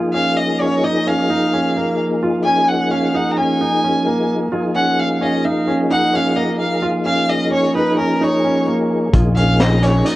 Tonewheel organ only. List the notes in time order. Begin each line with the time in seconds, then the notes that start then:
Already playing: F3 A#3 D#4 G#4
4.53 F3 A#3 D#4 G#4
9.13 F3 A#3 D#4 G#4